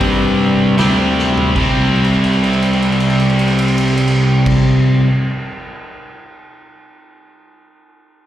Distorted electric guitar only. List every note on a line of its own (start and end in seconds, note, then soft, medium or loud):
0.00 0.76 C3 medium
0.00 0.75 G3 medium
0.00 0.74 C4 medium
0.77 1.53 C3 medium
0.77 1.53 G3 medium
0.77 1.54 C4 medium
1.55 5.05 C3 medium
1.55 5.08 G3 medium
1.59 5.09 C4 loud